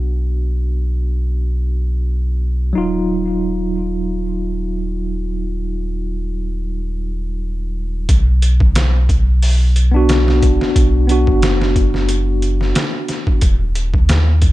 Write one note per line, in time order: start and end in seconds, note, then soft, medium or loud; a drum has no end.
0.00 2.73 B1 medium
0.00 2.71 B3 medium
0.00 2.72 D4 medium
0.00 2.73 F#4 medium
2.73 8.06 D#1 medium
2.73 8.04 F#3 medium
2.73 8.05 D#4 medium
2.78 8.06 F4 medium
8.09 10.57 B1 loud
8.09 kick loud
8.09 closed hi-hat medium
8.42 closed hi-hat medium
8.60 kick medium
8.75 snare loud
8.75 closed hi-hat medium
9.09 kick medium
9.09 closed hi-hat medium
9.43 open hi-hat medium
9.76 closed hi-hat medium
9.92 11.04 B3 medium
9.92 11.06 D4 medium
9.96 11.07 F#4 medium
10.09 snare loud
10.09 closed hi-hat medium
10.28 snare medium
10.43 kick medium
10.43 closed hi-hat medium
10.61 snare soft
10.76 11.29 B1 loud
10.76 kick loud
10.76 closed hi-hat medium
11.07 13.40 B3 medium
11.07 13.41 D4 medium
11.07 closed hi-hat medium
11.12 13.42 F#4 medium
11.27 12.73 F#1 medium
11.27 kick medium
11.42 snare loud
11.42 closed hi-hat medium
11.61 snare medium
11.76 kick medium
11.76 closed hi-hat medium
11.94 snare soft
12.09 closed hi-hat medium
12.42 closed hi-hat medium
12.61 snare soft
12.75 snare loud
12.75 closed hi-hat medium
13.08 snare soft
13.08 closed hi-hat medium
13.27 kick medium
13.41 13.95 D#1 loud
13.41 kick loud
13.41 closed hi-hat medium
13.75 closed hi-hat medium
13.94 14.52 D#2 medium
13.94 kick medium
14.09 snare loud
14.09 closed hi-hat medium
14.42 kick medium
14.42 closed hi-hat medium